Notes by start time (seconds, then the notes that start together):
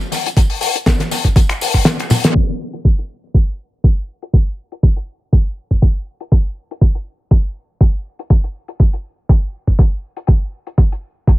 0.01 tambourine
0.12 open hi-hat, tambourine
0.26 closed hi-hat, tambourine
0.37 kick, closed hi-hat, tambourine
0.50 open hi-hat, tambourine
0.61 open hi-hat, tambourine
0.75 closed hi-hat, tambourine
0.86 kick, snare, closed hi-hat, tambourine
1.00 snare, closed hi-hat, tambourine
1.11 open hi-hat, tambourine
1.24 kick, closed hi-hat, tambourine
1.36 kick, closed hi-hat, tambourine
1.49 finger snap, closed hi-hat, tambourine
1.61 open hi-hat, tambourine
1.74 kick, tambourine
1.85 snare, closed hi-hat, tambourine
2.00 finger snap, closed hi-hat, tambourine
2.10 open hi-hat, high tom, tambourine
2.24 snare, closed hi-hat, tambourine
2.35 kick, closed hi-hat
2.73 closed hi-hat
2.85 kick, closed hi-hat
2.98 closed hi-hat
3.34 kick, closed hi-hat
3.84 kick, closed hi-hat
4.22 closed hi-hat
4.33 kick, closed hi-hat
4.72 closed hi-hat
4.83 kick, closed hi-hat
4.96 closed hi-hat
5.33 kick, closed hi-hat
5.71 kick
5.82 kick, closed hi-hat
6.20 closed hi-hat
6.32 kick, closed hi-hat
6.71 closed hi-hat
6.81 kick, closed hi-hat
6.95 closed hi-hat
7.31 kick, closed hi-hat
7.81 kick, closed hi-hat
8.19 closed hi-hat
8.30 kick, closed hi-hat
8.44 closed hi-hat
8.68 closed hi-hat
8.80 kick, closed hi-hat
8.93 closed hi-hat
9.29 kick, closed hi-hat
9.67 kick
9.79 kick, closed hi-hat
10.17 closed hi-hat
10.27 kick, closed hi-hat
10.67 closed hi-hat
10.78 kick, closed hi-hat
10.92 closed hi-hat
11.27 kick, closed hi-hat